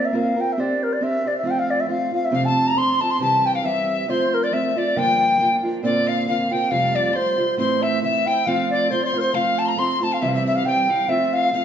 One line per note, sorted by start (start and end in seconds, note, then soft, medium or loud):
0.00 0.11 A#3 medium
0.00 0.13 C4 medium
0.00 0.13 F4 medium
0.00 0.14 A#4 medium
0.05 0.17 E5 medium
0.13 0.37 A#3 medium
0.13 0.36 C4 medium
0.13 0.36 F4 medium
0.13 0.35 A#4 medium
0.13 0.42 F5 medium
0.36 0.56 C4 soft
0.36 0.57 F4 soft
0.36 0.56 A#4 soft
0.40 0.54 G5 medium
0.52 0.61 E5 medium
0.57 1.00 C4 medium
0.57 1.01 D4 medium
0.57 1.01 G4 medium
0.57 1.03 C5 medium
0.57 0.85 D5 medium
0.83 0.94 A#4 medium
0.93 1.05 D5 medium
1.01 1.25 C4 medium
1.01 1.25 D4 soft
1.01 1.24 G4 medium
1.01 1.23 C5 medium
1.01 1.29 E5 medium
1.24 1.44 D4 soft
1.24 1.44 G4 soft
1.24 1.44 C5 soft
1.24 1.36 D5 medium
1.38 1.49 E5 medium
1.43 1.86 F3 medium
1.43 1.87 A3 medium
1.43 1.88 C4 medium
1.43 1.88 F4 medium
1.43 1.52 F5 medium
1.50 1.61 G5 medium
1.59 1.72 F5 loud
1.70 1.82 D5 medium
1.80 1.89 E5 medium
1.87 2.12 F3 medium
1.87 2.12 A3 medium
1.87 2.13 C4 soft
1.87 2.10 F4 medium
1.87 2.12 F5 medium
2.11 2.31 A3 soft
2.11 2.31 C4 soft
2.11 2.32 F4 soft
2.11 2.26 F5 medium
2.25 2.36 E5 medium
2.31 2.76 F2 medium
2.31 2.76 C3 medium
2.31 2.74 F3 medium
2.31 2.75 A3 medium
2.31 2.76 C4 medium
2.31 2.76 D4 medium
2.31 2.45 F5 medium
2.31 2.47 F5 medium
2.45 2.69 A5 medium
2.45 2.70 A5 medium
2.67 2.79 A#5 medium
2.67 2.80 A#5 medium
2.75 3.00 F3 soft
2.75 3.00 A3 soft
2.75 3.00 C4 medium
2.75 2.99 D4 medium
2.75 3.02 C6 medium
2.75 3.03 C6 medium
3.01 3.20 F3 soft
3.01 3.20 A3 soft
3.01 3.19 C4 soft
3.01 3.20 D4 soft
3.01 3.12 A5 medium
3.01 3.13 A5 medium
3.10 3.20 C6 medium
3.10 3.21 C6 medium
3.19 3.64 C3 soft
3.19 3.62 E3 medium
3.19 3.63 G3 medium
3.19 3.63 C4 medium
3.19 3.65 G4 medium
3.19 3.47 A5 loud
3.19 3.48 A5 medium
3.45 3.54 G5 medium
3.45 3.57 G5 medium
3.55 3.66 F5 medium
3.55 3.67 F5 medium
3.63 4.08 E3 medium
3.63 4.08 G3 soft
3.63 4.07 C4 soft
3.63 4.09 G4 medium
3.63 4.11 E5 medium
3.63 4.09 E5 medium
4.08 4.51 F3 medium
4.08 4.52 A3 medium
4.08 4.52 C4 medium
4.08 4.53 F4 medium
4.08 4.35 C5 medium
4.08 4.40 C6 medium
4.34 4.45 A#4 medium
4.42 4.55 D5 medium
4.52 4.76 F3 medium
4.52 4.75 A3 medium
4.52 4.76 C4 soft
4.52 4.74 F4 medium
4.52 4.79 E5 medium
4.52 4.80 E5 medium
4.76 4.96 A3 soft
4.76 4.96 C4 soft
4.76 4.96 F4 soft
4.76 4.98 D5 medium
4.76 5.00 D5 medium
4.96 5.40 G2 medium
4.96 5.40 D3 medium
4.96 5.38 F3 medium
4.96 5.38 A#3 medium
4.96 5.39 D4 medium
4.96 5.40 F4 medium
4.96 5.55 G5 medium
4.96 5.56 G5 medium
5.39 5.63 F3 soft
5.39 5.64 A#3 soft
5.39 5.63 D4 medium
5.39 5.62 F4 soft
5.63 5.83 F3 soft
5.63 5.82 A#3 soft
5.63 5.83 D4 soft
5.63 5.83 F4 soft
5.83 6.27 A#2 medium
5.83 6.26 D3 medium
5.83 6.27 A#3 medium
5.83 6.29 C4 medium
5.83 6.28 F4 medium
5.83 6.10 D5 medium
5.83 6.09 D5 medium
6.07 6.27 F5 medium
6.27 6.51 D3 soft
6.27 6.51 A#3 medium
6.27 6.50 C4 medium
6.27 6.49 F4 medium
6.27 6.54 F5 medium
6.27 6.50 F5 medium
6.51 6.71 A#3 soft
6.51 6.71 C4 soft
6.51 6.70 F4 soft
6.51 6.72 G5 medium
6.51 6.73 G5 medium
6.70 7.14 F2 medium
6.70 7.15 C3 medium
6.70 7.13 F3 medium
6.70 7.14 G3 medium
6.70 7.16 A3 medium
6.70 7.15 F4 medium
6.70 6.96 F5 medium
6.70 6.97 F5 medium
6.95 7.17 D5 medium
6.95 7.15 D5 medium
7.13 7.38 F3 soft
7.13 7.38 G3 soft
7.13 7.37 A3 medium
7.13 7.36 F4 medium
7.13 7.58 C5 medium
7.13 7.58 C6 medium
7.37 7.58 F3 soft
7.37 7.58 G3 soft
7.37 7.57 A3 soft
7.37 7.58 F4 soft
7.57 8.02 A2 medium
7.57 8.01 E3 medium
7.57 8.03 A3 medium
7.57 8.02 C4 medium
7.57 8.03 E4 medium
7.57 7.83 C5 medium
7.57 7.84 C6 medium
7.82 8.02 E5 medium
8.02 8.27 E3 soft
8.02 8.26 A3 medium
8.02 8.27 C4 soft
8.02 8.25 E4 soft
8.02 8.29 E5 medium
8.02 8.28 E5 medium
8.26 8.46 A3 soft
8.26 8.46 C4 soft
8.26 8.46 E4 soft
8.26 8.47 G5 medium
8.26 8.49 G5 medium
8.46 8.90 F3 medium
8.46 8.90 A3 medium
8.46 8.92 C4 medium
8.46 8.91 F4 medium
8.46 8.70 F5 medium
8.46 8.71 F5 medium
8.70 8.92 D5 medium
8.70 8.90 D5 medium
8.90 9.15 F3 soft
8.90 9.14 A3 soft
8.90 9.13 C4 soft
8.90 9.12 F4 soft
8.90 9.05 C5 medium
8.90 9.04 C6 medium
9.03 9.19 C5 medium
9.03 9.06 D5 medium
9.03 9.18 C6 medium
9.13 9.33 A3 soft
9.13 9.34 C4 soft
9.13 9.34 F4 soft
9.17 9.21 A#4 medium
9.17 9.34 C5 medium
9.17 9.36 C6 medium
9.34 9.76 F3 medium
9.34 9.77 A3 medium
9.34 9.78 C4 medium
9.34 9.78 F4 medium
9.34 9.60 F5 loud
9.34 9.60 F5 medium
9.58 9.69 A5 medium
9.58 9.67 A5 medium
9.66 9.80 A#5 medium
9.66 9.81 A#5 medium
9.66 9.69 C6 medium
9.77 10.02 F3 medium
9.77 10.02 A3 soft
9.77 10.01 C4 medium
9.77 9.99 F4 soft
9.77 10.02 C6 medium
9.77 10.05 C6 medium
10.01 10.22 A3 soft
10.01 10.22 C4 soft
10.01 10.21 F4 soft
10.01 10.14 A5 medium
10.01 10.15 A5 medium
10.12 10.23 F5 medium
10.12 10.21 F5 medium
10.21 10.65 C3 medium
10.21 10.64 E3 medium
10.21 10.65 G3 medium
10.21 10.65 C4 medium
10.21 10.66 E4 medium
10.21 10.34 E5 medium
10.21 10.30 E5 medium
10.28 10.37 F5 medium
10.35 10.45 E5 medium
10.35 10.46 E5 medium
10.46 10.55 E5 medium
10.46 10.57 E5 medium
10.55 10.67 F5 medium
10.55 10.65 F5 medium
10.65 10.89 E3 soft
10.65 10.89 G3 medium
10.65 10.89 C4 medium
10.65 10.88 E4 soft
10.65 11.10 G5 medium
10.65 10.92 G5 medium
10.89 11.08 G3 soft
10.89 11.07 C4 soft
10.89 11.09 E4 soft
10.89 11.11 F5 medium
11.08 11.52 F3 medium
11.08 11.53 A3 medium
11.08 11.52 C4 medium
11.08 11.55 F4 medium
11.08 11.35 E5 medium
11.08 11.37 E5 medium
11.33 11.53 F5 medium
11.52 11.65 F3 medium
11.52 11.65 A3 soft
11.52 11.65 C4 soft
11.52 11.65 F4 medium
11.52 11.65 F5 medium